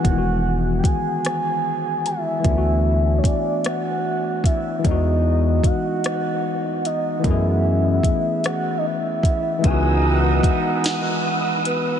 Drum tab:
HH |x-xx-x|x-xx-x|x-xx-x|x-xx-x|
SD |---r--|---r--|---r--|---r--|
BD |o-o---|o-o--o|o-o---|o-o--o|

HH |x-xx-x|
SD |---o--|
BD |o-o---|